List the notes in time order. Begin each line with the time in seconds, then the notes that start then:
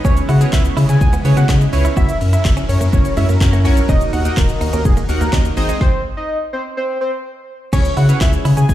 0.05 C#2 C#3 G#3 B3 C#4 E4 G#4 B4 C#5, kick, shaker
0.17 closed hi-hat, shaker
0.29 C#3 E4 F#5, open hi-hat, shaker
0.41 C#4 E4 G#4 B4 C#5, muted clean electric guitar stroke, closed hi-hat, shaker
0.53 C#2 E5, muted clean electric guitar stroke, kick, snare, clap, shaker
0.65 closed hi-hat, shaker
0.77 C#3 E4, open hi-hat, shaker
0.89 C#3 C#4 G#5, closed hi-hat, shaker
1.01 C#2 G#5, kick, shaker
1.13 B3, closed hi-hat, shaker
1.25 C#3 C#4 E4 G#4 B4 C#5, muted clean electric guitar stroke, open hi-hat, shaker
1.37 C#3 B3 F#5, closed hi-hat, shaker
1.49 C#3 C#4 E4 G#4 B4 D#5, kick, snare, clap, shaker
1.61 closed hi-hat, shaker
1.73 C#2 C#4 E4 G#4 B4 C#5, muted clean electric guitar stroke, open hi-hat, shaker
1.85 E4, closed hi-hat, shaker
1.97 F#1 F#3 C#4 F#4 A#4 E5, kick, shaker
2.09 closed hi-hat, shaker
2.21 F#2, muted clean electric guitar stroke, open hi-hat, shaker
2.33 E4 E5, closed hi-hat, shaker
2.45 F#1, kick, snare, clap, shaker
2.57 C#4, closed hi-hat, shaker
2.69 F#2 C#5, muted clean electric guitar stroke, open hi-hat, shaker
2.81 F#2 A#3, closed hi-hat, shaker
2.93 F#1 C#4 E4 F#4 A#4 C#5, muted clean electric guitar stroke, kick, shaker
3.05 closed hi-hat, shaker
3.17 F#2 G#3 C#4 E4 F#4 A#4 C#5 E5, open hi-hat, shaker
3.29 F#2 A#3, closed hi-hat, shaker
3.41 F#2 C#4 E4 F#4 A#4 C#5, muted clean electric guitar stroke, kick, snare, clap, shaker
3.53 A#3, closed hi-hat, shaker
3.65 A#1 C#4 E4 F#4 A#4 C#5, open hi-hat, shaker
3.77 closed hi-hat, shaker
3.89 D#1 D#3 A#3 C#4 D#4 F#4 A#4 D#5, kick, shaker
4.01 closed hi-hat, shaker
4.13 D#2 D#4 F#5, open hi-hat, shaker
4.25 A#3 D#4 F#4 A#4 D#5, muted clean electric guitar stroke, closed hi-hat, shaker
4.37 D#1 A#4, muted clean electric guitar stroke, kick, snare, clap, shaker
4.49 closed hi-hat, shaker
4.61 D#2 D#4, open hi-hat, shaker
4.73 D#2 C#4 A#4, closed hi-hat, shaker
4.85 D#1 G#4, kick, shaker
4.97 A#3, closed hi-hat, shaker
5.09 D#2 A#3 D#4 F#4 A#4 F#5, muted clean electric guitar stroke, open hi-hat, shaker
5.21 D#2 A#3 A#4, closed hi-hat, shaker
5.33 D#2 A#3 C#4 D#4 F#4 A#4 D#5, kick, snare, clap, shaker
5.45 closed hi-hat, shaker
5.57 G#1 G#3 C4 D#4 G#4 C5 D#5, muted clean electric guitar stroke, open hi-hat, shaker
5.69 D#4, closed hi-hat, shaker
5.81 C5, kick, snare
6.17 D#5
6.53 C5
6.77 C5
7.01 C5
7.73 C#2 C#4 E4 G#4 B4 C#5, kick, crash, shaker
7.85 closed hi-hat, shaker
7.97 C#3 E4 F#5, open hi-hat, shaker
8.09 C#4 E4 G#4 B4 C#5, muted clean electric guitar stroke, closed hi-hat, shaker
8.21 C#2 E5, muted clean electric guitar stroke, kick, snare, clap, shaker
8.33 closed hi-hat, shaker
8.45 C#3 E4, open hi-hat, shaker
8.57 C#3 C#4 G#5, closed hi-hat, shaker
8.69 C#2 G#5, kick, shaker